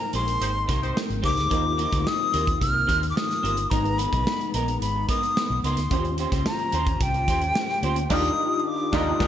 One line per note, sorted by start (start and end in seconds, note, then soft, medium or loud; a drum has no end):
0.00 1.49 G#3 medium
0.00 1.19 A#3 medium
0.00 3.67 C4 medium
0.00 1.20 D#4 medium
0.00 1.20 G#4 medium
0.00 1.20 A#4 medium
0.00 3.67 A#4 medium
0.00 1.20 C5 medium
0.00 0.14 A#5 loud
0.00 muted clean electric guitar stroke soft
0.00 closed hi-hat soft
0.13 0.36 A#1 medium
0.13 0.29 C4 medium
0.13 0.27 G4 medium
0.13 0.26 A#4 medium
0.13 0.93 C6 loud
0.13 closed hi-hat medium
0.27 muted clean electric guitar stroke soft
0.27 closed hi-hat medium
0.41 0.64 G#1 loud
0.41 0.50 D#4 medium
0.41 0.50 G4 medium
0.41 0.50 C5 loud
0.41 muted clean electric guitar stroke soft
0.41 closed hi-hat loud
0.55 muted clean electric guitar stroke soft
0.68 0.91 C2 medium
0.68 0.84 C4 medium
0.68 0.81 G4 medium
0.68 0.81 A#4 loud
0.68 kick loud
0.68 snare soft
0.68 closed hi-hat medium
0.82 1.00 D#4 medium
0.82 1.00 G4 medium
0.82 1.00 C5 loud
0.82 muted clean electric guitar stroke soft
0.82 closed hi-hat soft
0.96 muted clean electric guitar stroke soft
0.96 snare loud
1.09 1.21 G#1 loud
1.09 muted clean electric guitar stroke soft
1.09 closed hi-hat soft
1.22 1.35 C#2 medium
1.22 1.48 A#3 soft
1.22 1.38 C4 medium
1.22 1.49 D#4 soft
1.22 1.36 G4 medium
1.22 1.50 G4 soft
1.22 1.52 G#4 soft
1.22 1.35 A#4 medium
1.22 1.51 C5 medium
1.22 2.09 D6 loud
1.22 kick medium
1.22 open hi-hat medium
1.36 1.49 D2 medium
1.36 muted clean electric guitar stroke soft
1.36 snare soft
1.36 closed hi-hat medium
1.50 1.85 D#2 loud
1.50 3.69 D#3 medium
1.50 3.66 A#3 medium
1.50 3.69 A#3 medium
1.50 1.66 C4 medium
1.50 3.67 D#4 medium
1.50 3.69 F4 medium
1.50 3.67 F4 medium
1.50 1.63 G4 medium
1.50 3.67 G4 medium
1.50 1.63 A#4 loud
1.50 3.68 C5 medium
1.50 kick loud
1.50 closed hi-hat medium
1.64 muted clean electric guitar stroke medium
1.78 1.90 C4 medium
1.78 1.91 G4 medium
1.78 1.90 A#4 medium
1.78 closed hi-hat medium
1.91 2.04 D2 medium
1.91 2.05 C4 medium
1.91 2.04 G4 medium
1.91 2.04 A#4 medium
1.91 kick medium
1.91 snare soft
1.91 closed hi-hat medium
2.07 2.61 D#6 loud
2.07 snare loud
2.20 muted clean electric guitar stroke soft
2.33 2.57 D#2 medium
2.33 2.49 C4 medium
2.33 2.46 G4 medium
2.33 2.46 A#4 medium
2.33 closed hi-hat medium
2.47 muted clean electric guitar stroke soft
2.47 kick medium
2.47 closed hi-hat medium
2.61 2.84 C2 loud
2.61 3.06 F6 loud
2.61 muted clean electric guitar stroke soft
2.61 kick loud
2.61 closed hi-hat medium
2.74 muted clean electric guitar stroke medium
2.87 3.11 D#2 medium
2.87 3.03 C4 medium
2.87 3.02 G4 medium
2.87 3.00 A#4 medium
2.87 kick medium
2.87 closed hi-hat medium
3.02 muted clean electric guitar stroke soft
3.02 closed hi-hat medium
3.10 3.18 D6 medium
3.16 3.72 D#6 loud
3.16 muted clean electric guitar stroke soft
3.16 snare loud
3.30 muted clean electric guitar stroke soft
3.30 snare soft
3.30 closed hi-hat soft
3.43 3.66 G1 medium
3.43 3.59 C4 medium
3.43 3.57 G4 medium
3.43 3.56 A#4 medium
3.43 closed hi-hat medium
3.57 muted clean electric guitar stroke medium
3.57 closed hi-hat medium
3.70 4.05 G#1 loud
3.70 5.87 G#3 medium
3.70 5.88 G#3 medium
3.70 5.88 B3 medium
3.70 5.87 B3 medium
3.70 3.86 B3 medium
3.70 5.87 D#4 medium
3.70 3.85 D#4 medium
3.70 5.87 G#4 medium
3.70 3.84 A#4 medium
3.70 5.88 B4 medium
3.70 4.00 A#5 medium
3.70 kick loud
3.70 closed hi-hat medium
3.85 muted clean electric guitar stroke soft
3.85 closed hi-hat soft
3.98 4.10 B3 medium
3.98 4.11 D#4 medium
3.98 4.11 A#4 medium
3.98 4.53 B5 loud
3.98 closed hi-hat medium
4.12 4.24 B1 loud
4.12 4.25 B3 medium
4.12 4.25 D#4 medium
4.12 4.24 A#4 medium
4.12 kick medium
4.12 closed hi-hat medium
4.27 snare loud
4.41 muted clean electric guitar stroke soft
4.41 closed hi-hat soft
4.54 4.77 A#1 medium
4.54 4.69 B3 medium
4.54 4.68 D#4 medium
4.54 4.67 A#4 medium
4.54 4.79 A#5 medium
4.54 closed hi-hat medium
4.68 muted clean electric guitar stroke soft
4.68 closed hi-hat medium
4.81 5.04 G#1 loud
4.81 5.07 B5 loud
4.81 muted clean electric guitar stroke soft
4.81 closed hi-hat medium
4.96 muted clean electric guitar stroke soft
5.09 5.24 B3 medium
5.09 5.22 D#4 medium
5.09 5.21 A#4 medium
5.09 5.60 D#6 loud
5.09 kick medium
5.09 snare soft
5.09 closed hi-hat medium
5.23 muted clean electric guitar stroke soft
5.23 closed hi-hat medium
5.36 muted clean electric guitar stroke soft
5.36 snare loud
5.50 5.61 B1 medium
5.50 muted clean electric guitar stroke soft
5.64 5.75 C#2 loud
5.64 5.79 B3 medium
5.64 5.78 D#4 loud
5.64 5.77 A#4 loud
5.64 6.15 C6 medium
5.64 closed hi-hat medium
5.77 5.89 D2 medium
5.77 muted clean electric guitar stroke soft
5.77 snare soft
5.77 closed hi-hat medium
5.90 6.25 D#2 loud
5.90 9.27 D#3 medium
5.90 7.79 A#3 medium
5.90 7.79 C#4 medium
5.90 6.06 C#4 medium
5.90 8.09 C#4 medium
5.90 8.08 F4 medium
5.90 7.79 F4 medium
5.90 5.98 F#4 medium
5.90 9.27 G4 medium
5.90 6.05 G4 medium
5.90 8.09 C5 medium
5.90 6.04 C5 medium
5.90 7.80 C5 medium
5.90 kick loud
5.90 closed hi-hat medium
5.98 7.82 G4 medium
6.05 muted clean electric guitar stroke soft
6.05 closed hi-hat soft
6.18 6.31 C#4 medium
6.18 6.31 G4 medium
6.18 6.31 C5 medium
6.18 closed hi-hat medium
6.32 6.43 C#2 medium
6.32 6.44 C#4 medium
6.32 6.44 G4 medium
6.32 6.44 C5 medium
6.32 kick medium
6.32 snare soft
6.32 closed hi-hat medium
6.46 7.04 A#5 loud
6.46 snare loud
6.59 muted clean electric guitar stroke soft
6.59 closed hi-hat soft
6.72 6.96 D#2 medium
6.72 6.89 C#4 medium
6.72 6.87 G4 medium
6.72 6.86 C5 loud
6.72 closed hi-hat medium
6.87 muted clean electric guitar stroke medium
6.87 kick loud
6.87 closed hi-hat medium
7.01 7.28 C2 medium
7.01 8.11 G5 loud
7.01 muted clean electric guitar stroke medium
7.01 kick loud
7.01 closed hi-hat medium
7.14 muted clean electric guitar stroke soft
7.14 closed hi-hat soft
7.28 7.51 D#2 medium
7.28 7.44 C#4 medium
7.28 7.42 G4 medium
7.28 7.41 C5 medium
7.28 kick medium
7.28 snare soft
7.28 closed hi-hat medium
7.42 muted clean electric guitar stroke soft
7.42 closed hi-hat soft
7.55 muted clean electric guitar stroke soft
7.55 snare loud
7.69 muted clean electric guitar stroke soft
7.69 snare soft
7.82 8.05 D2 medium
7.82 8.10 A#3 medium
7.82 7.98 C#4 medium
7.82 8.11 C#4 medium
7.82 8.10 F4 medium
7.82 8.10 G4 medium
7.82 7.97 G4 medium
7.82 8.11 C5 medium
7.82 7.96 C5 loud
7.82 closed hi-hat medium
7.96 muted clean electric guitar stroke soft
7.96 closed hi-hat medium
8.10 8.29 D#2 loud
8.10 8.29 D4 loud
8.10 9.27 D4 medium
8.10 8.29 D#4 loud
8.10 8.24 F4 loud
8.10 8.29 F4 loud
8.10 9.27 F4 medium
8.10 8.24 G4 loud
8.10 8.29 G4 loud
8.10 8.30 G4 loud
8.10 8.24 A#4 loud
8.10 8.30 A#4 loud
8.10 8.30 D5 loud
8.10 8.59 D#6 loud
8.10 kick loud
8.10 snare loud
8.10 crash medium
8.59 8.68 D#6 medium
8.67 8.97 D6 loud
8.92 9.12 D#2 loud
8.92 9.11 D4 loud
8.92 9.12 D#4 loud
8.92 9.11 F4 loud
8.92 9.07 F4 loud
8.92 9.12 F4 loud
8.92 9.07 G4 medium
8.92 9.12 G4 loud
8.92 9.07 A#4 loud
8.92 9.13 A#4 loud
8.92 9.12 D5 loud
8.92 9.27 D#6 loud
8.92 kick loud
8.92 snare loud
9.19 9.27 D#2 loud
9.19 9.27 D4 loud
9.19 9.27 D#4 loud
9.19 9.27 F4 loud
9.19 9.27 F4 medium
9.19 9.27 G4 loud
9.19 9.27 A#4 medium
9.19 9.27 D5 loud
9.19 kick loud
9.19 snare loud